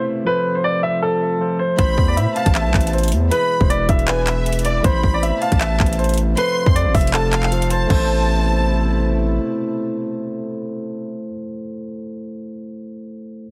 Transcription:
Already playing: brass ensemble B2 C3 A3 E4, tine electric piano A3 E4 B4 C5
0.25 tine electric piano F3 F4 A4 C5, brass ensemble F3 A3 F4, grand piano B4
0.55 grand piano C5
0.64 grand piano D5
0.83 grand piano E5
1.02 grand piano A4
1.40 tine electric piano F3 F4 A4 C5
1.59 grand piano C5
1.77 808-style bass A1, brass ensemble B2 C3 E4, tine electric piano A3 E4 B4 C5, grand piano C5, violin section B5, kick, closed hi-hat
1.98 808-style bass E2, kick
2.08 grand piano D5
2.17 808-style bass A2, grand piano E5, closed hi-hat
2.36 grand piano F5, violin section A5, closed hi-hat
2.46 808-style bass A1, kick, closed hi-hat
2.55 grand piano E5, clap, closed hi-hat
2.65 808-style bass B1
2.74 808-style bass A1, kick, clap, closed hi-hat
2.81 closed hi-hat
2.87 closed hi-hat
2.93 grand piano C5, closed hi-hat
2.98 closed hi-hat
3.03 closed hi-hat
3.08 closed hi-hat
3.12 808-style bass E2, closed hi-hat
3.30 brass ensemble B2 E3 G#3, tine electric piano E3 E4 G#4 B4, grand piano B4, violin section B5, closed hi-hat
3.61 808-style bass E1, grand piano C5, kick
3.70 grand piano D5, closed hi-hat
3.89 808-style bass E1, grand piano E5, kick, closed hi-hat
3.99 closed hi-hat
4.08 grand piano B4, violin section G#5, clap, closed hi-hat
4.27 violin section E5, clap, closed hi-hat
4.46 closed hi-hat
4.53 closed hi-hat
4.59 closed hi-hat
4.65 violin section D5, grand piano D5, closed hi-hat
4.83 808-style bass A1, brass ensemble B2 C3 A3, tine electric piano A3 E4 B4 C5, grand piano C5, violin section B5, kick, closed hi-hat
5.03 808-style bass A1, kick
5.14 grand piano D5
5.23 grand piano E5, closed hi-hat
5.42 grand piano F5, violin section A5, closed hi-hat
5.52 808-style bass A1, kick, closed hi-hat
5.61 grand piano E5, clap, closed hi-hat
5.80 808-style bass A1, kick, clap, closed hi-hat
5.86 closed hi-hat
5.93 closed hi-hat
5.99 grand piano C5, closed hi-hat
6.04 closed hi-hat
6.09 closed hi-hat
6.14 closed hi-hat
6.18 closed hi-hat
6.36 brass ensemble C3 F3 F4, tine electric piano F3 F4 A4 C5, grand piano B4, violin section C6, closed hi-hat
6.66 808-style bass F2, grand piano C5, kick
6.76 grand piano D5, closed hi-hat
6.86 808-style bass G#1
6.94 808-style bass F1, grand piano E5, kick, closed hi-hat, open hi-hat
7.01 closed hi-hat
7.07 closed hi-hat
7.14 grand piano A4, violin section A5, clap, closed hi-hat
7.33 violin section F5, clap, closed hi-hat
7.43 clap, closed hi-hat
7.51 tine electric piano F3 F4 A4 C5, closed hi-hat
7.62 closed hi-hat
7.70 grand piano C5, violin section A5, closed hi-hat
7.87 808-style bass A1, brass ensemble B2 C3 A3 E4, tine electric piano A3 E4, grand piano C5, violin section A5, kick, crash
7.91 tine electric piano A4 C5

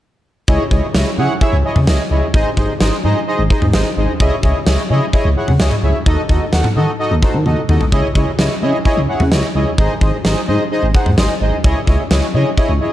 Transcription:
0.48 analog synth bass C#2, analog polysynth E4 G#4 C#5 D#5, kick
0.71 analog synth bass C#2, analog polysynth E4 G#4 C#5 D#5, kick
0.94 analog synth bass C#2, analog polysynth E4 G#4 C#5 D#5, snare
1.18 analog synth bass C#3, analog polysynth E4 G#4 C#5 F#5
1.41 analog polysynth E4 G#4 C#5 E5, kick
1.53 analog synth bass C#2
1.64 analog polysynth E4 G#4 C#5 D#5
1.76 analog synth bass C#3, mid tom
1.87 analog synth bass C#2, analog polysynth E4 G#4 C#5 D#5, snare
2.11 analog synth bass C#2, analog polysynth E4 G#4 C#5 D#5
2.34 analog synth bass G#1, analog polysynth D#4 G#4 C5 D#5, kick
2.57 analog synth bass G#1, analog polysynth D#4 G#4 C5 D#5, kick
2.81 analog synth bass G#1, analog polysynth D#4 G#4 C5 D#5, snare
3.04 analog synth bass G#2, analog polysynth D#4 G#4 C5 D#5
3.27 analog polysynth D#4 G#4 C5 D#5
3.39 analog synth bass G#1
3.50 analog polysynth D#4 G#4 C5 D#5, kick
3.62 analog synth bass G#2, mid tom
3.73 analog synth bass G#1, analog polysynth D#4 G#4 C5 D#5, snare
3.97 analog synth bass G#1, analog polysynth D#4 G#4 C5 D#5
4.20 analog synth bass C#2, analog polysynth E4 G#4 C#5 D#5, kick
4.43 analog synth bass C#2, analog polysynth E4 G#4 C#5 D#5, kick
4.67 analog synth bass C#2, analog polysynth E4 G#4 C#5 D#5, snare
4.90 analog synth bass C#3, analog polysynth E4 G#4 C#5 D#5
5.13 analog polysynth E4 G#4 C#5 D#5, kick
5.25 analog synth bass C#2
5.36 analog polysynth E4 G#4 C#5 F#5
5.48 analog synth bass C#3, mid tom
5.60 analog synth bass C#2, analog polysynth E4 G#4 C#5 D#5, snare
5.71 mid tom
5.83 analog synth bass C#2, analog polysynth E4 G#4 C#5 E5
6.06 analog synth bass D#2, analog polysynth D#4 F#4 A4 D#5, kick
6.29 analog synth bass D#2, analog polysynth D#4 F#4 A4 D#5, kick
6.53 analog synth bass D#2, analog polysynth D#4 F#4 A4 F#5, snare
6.64 mid tom
6.76 analog synth bass D#3, analog polysynth D#4 F#4 A4 D#5
6.99 analog polysynth D#4 F#4 A4 D#5
7.11 analog synth bass D#2
7.22 analog polysynth D#4 F#4 A4 C5, kick
7.34 analog synth bass D#3
7.46 analog synth bass D#2, analog polysynth D#4 F#4 A4 D#5, high tom
7.69 analog synth bass D#2, analog polysynth D#4 F#4 A4 D#5, mid tom
7.81 floor tom
7.92 analog synth bass C#2, analog polysynth E4 G#4 C#5 D#5, kick
8.15 analog synth bass C#2, analog polysynth E4 G#4 C#5 D#5, kick
8.39 analog synth bass C#2, analog polysynth E4 G#4 C#5 D#5, snare
8.62 analog synth bass C#3, analog polysynth E4 G#4 C#5 D#5
8.85 analog polysynth E4 G#4 C#5 D#5, kick
8.97 analog synth bass C#2
9.08 analog polysynth E4 G#4 C#5 F#5
9.20 analog synth bass C#3, mid tom
9.32 analog synth bass C#2, analog polysynth E4 G#4 C#5 D#5, snare
9.55 analog synth bass C#2, analog polysynth E4 G#4 C#5 D#5
9.78 analog synth bass G#1, analog polysynth D#4 G#4 C5 D#5, kick
10.01 analog synth bass G#1, analog polysynth D#4 G#4 C5 D#5, kick
10.25 analog synth bass G#1, analog polysynth D#4 G#4 C5 D#5, snare
10.48 analog synth bass G#2, analog polysynth D#4 G#4 C5 D#5
10.71 analog polysynth D#4 G#4 C5 D#5
10.83 analog synth bass G#1
10.94 analog polysynth D#4 G#4 C5 F#5, kick
11.06 analog synth bass G#2, mid tom
11.18 analog synth bass G#1, analog polysynth D#4 G#4 C5 D#5, snare
11.41 analog synth bass G#1, analog polysynth D#4 G#4 C5 D#5
11.64 analog synth bass C#2, analog polysynth E4 G#4 C#5 D#5, kick
11.87 analog synth bass C#2, analog polysynth E4 G#4 C#5 D#5, kick
12.11 analog synth bass C#2, analog polysynth E4 G#4 C#5 D#5, snare
12.34 analog synth bass C#3, analog polysynth E4 G#4 C#5 D#5
12.57 analog polysynth E4 G#4 C#5 D#5, kick
12.69 analog synth bass C#2
12.81 analog polysynth E4 G#4 C#5 D#5

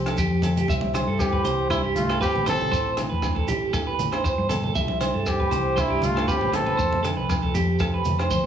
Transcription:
Already playing: fingered electric bass C2, nylon-string guitar F2 C3 F3 A3 C4, trumpet C4
0.06 clean electric guitar A4, cross-stick, closed hi-hat, low agogo, shekere
0.17 fingered electric bass F2, nylon-string guitar F3, clean electric guitar G4, kick, closed hi-hat, high conga, shekere
0.30 fingered electric bass F2
0.42 nylon-string guitar F4, clean electric guitar A4, closed hi-hat, high conga, low conga, low agogo, shekere
0.56 clean electric guitar G4, closed hi-hat, high conga, shekere
0.68 fingered electric bass C2, nylon-string guitar C3 G3 C4 E4, clean electric guitar E5, kick, shekere
0.81 low conga
0.94 nylon-string guitar G3, clean electric guitar C5, cross-stick, closed hi-hat, high conga, low agogo, shekere
1.07 fingered electric bass G2, clean electric guitar A4
1.19 nylon-string guitar E3 C4, alto saxophone C4, trumpet G4, kick, cross-stick, low agogo, shekere
1.33 clean electric guitar B4, kick
1.44 fingered electric bass C2, nylon-string guitar E4, clean electric guitar C5, closed hi-hat, low conga, shekere
1.70 nylon-string guitar G2, alto saxophone G3, trumpet E4, clean electric guitar C5, kick, cross-stick, low agogo, shekere
1.84 clean electric guitar G4
1.95 fingered electric bass C2, nylon-string guitar G3, alto saxophone A3, trumpet F4, closed hi-hat, high conga, shekere
2.09 clean electric guitar A4, cross-stick, low agogo
2.21 nylon-string guitar E3, alto saxophone C4, trumpet G4, clean electric guitar B4, kick, shekere
2.34 fingered electric bass A1, high conga
2.46 alto saxophone C4, nylon-string guitar C4, trumpet A4, clean electric guitar C5, cross-stick, closed hi-hat, high conga, low conga, low agogo, shekere
2.59 muted clean electric guitar stroke, high conga
2.71 fingered electric bass A1, nylon-string guitar A2 A3 C4 E4, clean electric guitar C5, kick, shekere
2.97 nylon-string guitar A3, cross-stick, closed hi-hat, high conga, low agogo, shekere
3.10 fingered electric bass E2, clean electric guitar B4
3.22 nylon-string guitar E3 C4, kick, cross-stick, low agogo, shekere
3.35 clean electric guitar A4, kick
3.48 fingered electric bass A1, nylon-string guitar E4, clean electric guitar G4, closed hi-hat, low conga, shekere
3.73 nylon-string guitar E2, clean electric guitar A4, kick, cross-stick, low agogo, shekere
3.87 clean electric guitar B4
3.99 fingered electric bass A1, nylon-string guitar A3, closed hi-hat, high conga, shekere
4.12 clean electric guitar C5, cross-stick, low agogo
4.23 nylon-string guitar A2, clean electric guitar C5, kick, shekere
4.38 fingered electric bass G2
4.49 nylon-string guitar B2, clean electric guitar A4, closed hi-hat, high conga, low conga, low agogo, shekere
4.63 clean electric guitar A4, high conga
4.75 fingered electric bass C2, nylon-string guitar C3 G3 C4 E4, clean electric guitar E5, kick, shekere
4.88 low conga
5.01 nylon-string guitar G3, clean electric guitar C5, cross-stick, closed hi-hat, high conga, low agogo, shekere
5.14 fingered electric bass G2, clean electric guitar A4
5.26 nylon-string guitar E3 C4, alto saxophone C4, trumpet G4, kick, cross-stick, low agogo, shekere
5.40 clean electric guitar B4, kick
5.51 fingered electric bass C2, nylon-string guitar E4, clean electric guitar C5, closed hi-hat, low conga, shekere
5.76 nylon-string guitar G2, alto saxophone G3, trumpet E4, clean electric guitar C5, kick, cross-stick, low agogo, shekere
5.90 clean electric guitar G4
6.02 fingered electric bass C2, nylon-string guitar G3, trumpet F4, closed hi-hat, high conga, shekere
6.06 alto saxophone A3
6.16 clean electric guitar A4, cross-stick, low agogo
6.28 nylon-string guitar D3, alto saxophone C4, trumpet G4, clean electric guitar B4, kick, shekere
6.41 fingered electric bass A1, high conga
6.52 nylon-string guitar E3, trumpet A4, muted clean electric guitar stroke, cross-stick, closed hi-hat, high conga, low conga, low agogo
6.56 alto saxophone C4
6.66 clean electric guitar B4, high conga
6.77 nylon-string guitar F2 A3 C4, fingered electric bass F2, clean electric guitar C5, muted nylon-string guitar stroke, kick, shekere
6.92 low conga
7.03 nylon-string guitar A3, clean electric guitar A4, cross-stick, closed hi-hat, high conga, low agogo, shekere
7.17 fingered electric bass C2, clean electric guitar B4
7.29 nylon-string guitar F3 C4, kick, cross-stick, low agogo, shekere
7.42 clean electric guitar A4, kick
7.54 fingered electric bass F2, nylon-string guitar F4, clean electric guitar G4, closed hi-hat, low conga, shekere
7.79 nylon-string guitar C3, clean electric guitar A4, kick, cross-stick, low agogo, shekere
7.94 clean electric guitar B4
8.05 fingered electric bass F2, nylon-string guitar A3, closed hi-hat, high conga, shekere
8.19 clean electric guitar C5, cross-stick, low agogo
8.31 nylon-string guitar F3, clean electric guitar C5, kick, high conga, shekere

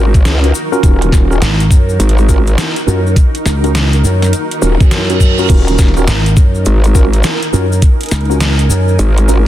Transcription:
Already playing: wobble bass G#1, ambient pad D#4 F#4 A#4
0.14 kick, closed hi-hat, cabasa
0.25 wobble bass C#2, snare, closed hi-hat, cabasa
0.43 tine electric piano C#4 F4 F#4 A#4, closed hi-hat, cabasa
0.55 cabasa
0.72 tine electric piano C#4 F4 F#4 A#4, cabasa
0.83 wobble bass D#1, kick, closed hi-hat, cabasa
1.02 closed hi-hat, cabasa
1.12 wobble bass D#1, kick, snare, cabasa
1.30 tine electric piano C#4 F4 F#4 A#4, cabasa
1.42 slap bass G#1, snare, closed hi-hat, cabasa
1.60 closed hi-hat, cabasa
1.71 slap bass F#2, kick, cabasa
1.89 cabasa
2.00 wobble bass G#1, closed hi-hat, cabasa
2.09 closed hi-hat
2.18 cabasa
2.29 tine electric piano C#4 F4 F#4 A#4, kick, cabasa
2.47 closed hi-hat, cabasa
2.58 snare, closed hi-hat, cabasa
2.76 closed hi-hat, cabasa
2.87 slap bass F#2, tine electric piano C#4 F4 F#4 A#4, cabasa
3.07 cabasa
3.16 kick, closed hi-hat, cabasa
3.35 closed hi-hat, cabasa
3.46 slap bass C#2, snare, cabasa
3.64 tine electric piano C#4 F4 F#4 A#4, closed hi-hat, cabasa
3.75 snare, closed hi-hat, cabasa
3.93 closed hi-hat, cabasa
4.04 slap bass F#2, cabasa
4.22 snare, closed hi-hat, cabasa
4.33 closed hi-hat, reverse cymbal, cabasa
4.51 closed hi-hat, cabasa
4.62 wobble bass D#1, tine electric piano C#4 F4 F#4 A#4, cabasa
4.80 slap bass F#2, kick, closed hi-hat, cabasa
4.91 snare, closed hi-hat, cabasa
5.10 tine electric piano C#4 F4 F#4 A#4, closed hi-hat, cabasa
5.20 kick, cabasa
5.38 tine electric piano C#4 F4 F#4 A#4, cabasa
5.49 wobble bass D#1, kick, closed hi-hat, crash, cabasa
5.67 closed hi-hat, cabasa
5.79 wobble bass D#1, kick, snare, cabasa
5.82 snare
5.85 snare
5.88 snare
5.94 tine electric piano C#4 F4 F#4 A#4, snare, cabasa
6.08 slap bass G#1, snare, closed hi-hat, cabasa
6.26 ambient pad G#5, closed hi-hat, cabasa
6.37 slap bass F#2, kick, cabasa
6.55 cabasa
6.65 wobble bass G#1, closed hi-hat, cabasa
6.84 closed hi-hat, cabasa
6.95 tine electric piano C#4 F4 F#4 A#4, kick, cabasa
7.13 closed hi-hat, cabasa
7.23 snare, closed hi-hat, cabasa
7.43 closed hi-hat, cabasa
7.53 slap bass F#2, tine electric piano C#4 F4 F#4 A#4, cabasa
7.72 cabasa
7.82 kick, closed hi-hat, cabasa
8.01 closed hi-hat, cabasa
8.03 closed hi-hat
8.06 closed hi-hat
8.09 slap bass C#2, snare, closed hi-hat, cabasa
8.16 closed hi-hat
8.21 closed hi-hat
8.25 closed hi-hat
8.30 tine electric piano C#4 F4 F#4 A#4, cabasa
8.40 snare, closed hi-hat, cabasa
8.59 closed hi-hat, cabasa
8.70 slap bass F#2, cabasa
8.88 cabasa
8.99 wobble bass G#1, closed hi-hat, cabasa
9.18 closed hi-hat, cabasa
9.28 tine electric piano C#4 F4 F#4 A#4, cabasa

